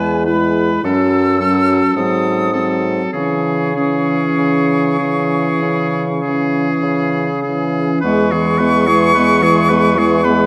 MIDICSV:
0, 0, Header, 1, 6, 480
1, 0, Start_track
1, 0, Key_signature, 4, "minor"
1, 0, Tempo, 1138520
1, 827, Tempo, 1183432
1, 1307, Time_signature, 4, 2, 24, 8
1, 1307, Tempo, 1237113
1, 2267, Tempo, 1209677
1, 3227, Tempo, 1102941
1, 4282, End_track
2, 0, Start_track
2, 0, Title_t, "Flute"
2, 0, Program_c, 0, 73
2, 0, Note_on_c, 0, 80, 87
2, 97, Note_off_c, 0, 80, 0
2, 113, Note_on_c, 0, 83, 71
2, 357, Note_on_c, 0, 88, 80
2, 363, Note_off_c, 0, 83, 0
2, 831, Note_on_c, 0, 87, 77
2, 837, Note_off_c, 0, 88, 0
2, 1184, Note_off_c, 0, 87, 0
2, 1305, Note_on_c, 0, 85, 71
2, 2975, Note_off_c, 0, 85, 0
2, 3225, Note_on_c, 0, 85, 112
2, 4189, Note_on_c, 0, 83, 98
2, 4195, Note_off_c, 0, 85, 0
2, 4282, Note_off_c, 0, 83, 0
2, 4282, End_track
3, 0, Start_track
3, 0, Title_t, "Oboe"
3, 0, Program_c, 1, 68
3, 0, Note_on_c, 1, 71, 51
3, 97, Note_off_c, 1, 71, 0
3, 110, Note_on_c, 1, 71, 50
3, 350, Note_off_c, 1, 71, 0
3, 357, Note_on_c, 1, 69, 46
3, 587, Note_off_c, 1, 69, 0
3, 591, Note_on_c, 1, 69, 49
3, 822, Note_off_c, 1, 69, 0
3, 826, Note_on_c, 1, 69, 42
3, 1057, Note_off_c, 1, 69, 0
3, 1059, Note_on_c, 1, 69, 44
3, 1299, Note_off_c, 1, 69, 0
3, 1301, Note_on_c, 1, 68, 42
3, 1538, Note_off_c, 1, 68, 0
3, 1544, Note_on_c, 1, 68, 44
3, 2015, Note_off_c, 1, 68, 0
3, 2022, Note_on_c, 1, 68, 46
3, 2435, Note_off_c, 1, 68, 0
3, 2502, Note_on_c, 1, 68, 44
3, 2979, Note_off_c, 1, 68, 0
3, 2983, Note_on_c, 1, 68, 44
3, 3212, Note_off_c, 1, 68, 0
3, 3215, Note_on_c, 1, 71, 61
3, 3348, Note_on_c, 1, 68, 57
3, 3354, Note_off_c, 1, 71, 0
3, 3464, Note_on_c, 1, 71, 60
3, 3470, Note_off_c, 1, 68, 0
3, 3589, Note_on_c, 1, 68, 56
3, 3596, Note_off_c, 1, 71, 0
3, 3704, Note_off_c, 1, 68, 0
3, 3706, Note_on_c, 1, 71, 65
3, 3831, Note_on_c, 1, 68, 59
3, 3838, Note_off_c, 1, 71, 0
3, 3946, Note_on_c, 1, 71, 59
3, 3952, Note_off_c, 1, 68, 0
3, 4072, Note_on_c, 1, 68, 60
3, 4078, Note_off_c, 1, 71, 0
3, 4179, Note_off_c, 1, 68, 0
3, 4182, Note_on_c, 1, 71, 64
3, 4282, Note_off_c, 1, 71, 0
3, 4282, End_track
4, 0, Start_track
4, 0, Title_t, "Clarinet"
4, 0, Program_c, 2, 71
4, 0, Note_on_c, 2, 64, 56
4, 102, Note_off_c, 2, 64, 0
4, 115, Note_on_c, 2, 64, 50
4, 353, Note_off_c, 2, 64, 0
4, 362, Note_on_c, 2, 61, 50
4, 590, Note_off_c, 2, 61, 0
4, 596, Note_on_c, 2, 61, 44
4, 824, Note_off_c, 2, 61, 0
4, 832, Note_on_c, 2, 60, 45
4, 1060, Note_off_c, 2, 60, 0
4, 1064, Note_on_c, 2, 60, 42
4, 1303, Note_off_c, 2, 60, 0
4, 1307, Note_on_c, 2, 61, 42
4, 1541, Note_off_c, 2, 61, 0
4, 1546, Note_on_c, 2, 61, 46
4, 2016, Note_off_c, 2, 61, 0
4, 2028, Note_on_c, 2, 61, 43
4, 2446, Note_off_c, 2, 61, 0
4, 2514, Note_on_c, 2, 61, 43
4, 2985, Note_off_c, 2, 61, 0
4, 2992, Note_on_c, 2, 61, 44
4, 3222, Note_off_c, 2, 61, 0
4, 3225, Note_on_c, 2, 59, 63
4, 3352, Note_on_c, 2, 56, 55
4, 3358, Note_off_c, 2, 59, 0
4, 3474, Note_on_c, 2, 59, 57
4, 3481, Note_off_c, 2, 56, 0
4, 3596, Note_on_c, 2, 56, 56
4, 3603, Note_off_c, 2, 59, 0
4, 3716, Note_off_c, 2, 56, 0
4, 3719, Note_on_c, 2, 59, 59
4, 3834, Note_on_c, 2, 56, 59
4, 3841, Note_off_c, 2, 59, 0
4, 3956, Note_on_c, 2, 59, 60
4, 3962, Note_off_c, 2, 56, 0
4, 4074, Note_on_c, 2, 56, 65
4, 4081, Note_off_c, 2, 59, 0
4, 4188, Note_off_c, 2, 56, 0
4, 4191, Note_on_c, 2, 59, 64
4, 4282, Note_off_c, 2, 59, 0
4, 4282, End_track
5, 0, Start_track
5, 0, Title_t, "French horn"
5, 0, Program_c, 3, 60
5, 0, Note_on_c, 3, 56, 52
5, 100, Note_off_c, 3, 56, 0
5, 113, Note_on_c, 3, 56, 46
5, 352, Note_off_c, 3, 56, 0
5, 356, Note_on_c, 3, 54, 48
5, 587, Note_off_c, 3, 54, 0
5, 590, Note_on_c, 3, 54, 44
5, 821, Note_off_c, 3, 54, 0
5, 827, Note_on_c, 3, 54, 48
5, 1057, Note_off_c, 3, 54, 0
5, 1060, Note_on_c, 3, 54, 47
5, 1298, Note_off_c, 3, 54, 0
5, 1301, Note_on_c, 3, 52, 42
5, 1538, Note_off_c, 3, 52, 0
5, 1545, Note_on_c, 3, 52, 42
5, 2016, Note_off_c, 3, 52, 0
5, 2027, Note_on_c, 3, 52, 45
5, 2500, Note_off_c, 3, 52, 0
5, 2511, Note_on_c, 3, 52, 44
5, 2927, Note_off_c, 3, 52, 0
5, 2995, Note_on_c, 3, 52, 43
5, 3223, Note_off_c, 3, 52, 0
5, 3227, Note_on_c, 3, 56, 62
5, 3350, Note_on_c, 3, 52, 54
5, 3357, Note_off_c, 3, 56, 0
5, 3472, Note_on_c, 3, 56, 56
5, 3479, Note_off_c, 3, 52, 0
5, 3591, Note_on_c, 3, 52, 61
5, 3597, Note_off_c, 3, 56, 0
5, 3706, Note_off_c, 3, 52, 0
5, 3709, Note_on_c, 3, 56, 65
5, 3831, Note_on_c, 3, 52, 59
5, 3838, Note_off_c, 3, 56, 0
5, 3953, Note_on_c, 3, 56, 62
5, 3960, Note_off_c, 3, 52, 0
5, 4068, Note_on_c, 3, 52, 62
5, 4074, Note_off_c, 3, 56, 0
5, 4184, Note_off_c, 3, 52, 0
5, 4187, Note_on_c, 3, 56, 69
5, 4282, Note_off_c, 3, 56, 0
5, 4282, End_track
6, 0, Start_track
6, 0, Title_t, "Bassoon"
6, 0, Program_c, 4, 70
6, 0, Note_on_c, 4, 40, 64
6, 299, Note_off_c, 4, 40, 0
6, 355, Note_on_c, 4, 42, 57
6, 770, Note_off_c, 4, 42, 0
6, 829, Note_on_c, 4, 44, 56
6, 1249, Note_off_c, 4, 44, 0
6, 1308, Note_on_c, 4, 49, 52
6, 1728, Note_off_c, 4, 49, 0
6, 1784, Note_on_c, 4, 49, 51
6, 2210, Note_off_c, 4, 49, 0
6, 2267, Note_on_c, 4, 49, 52
6, 2693, Note_off_c, 4, 49, 0
6, 2748, Note_on_c, 4, 49, 50
6, 3172, Note_off_c, 4, 49, 0
6, 3225, Note_on_c, 4, 40, 71
6, 4282, Note_off_c, 4, 40, 0
6, 4282, End_track
0, 0, End_of_file